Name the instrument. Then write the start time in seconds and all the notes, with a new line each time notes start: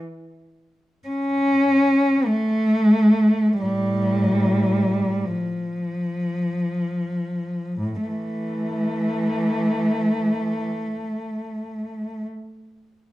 cello
1.08 C#4
2.26 A3
3.61 A2 G3
5.27 F3
7.80 A2
8.08 E3 A3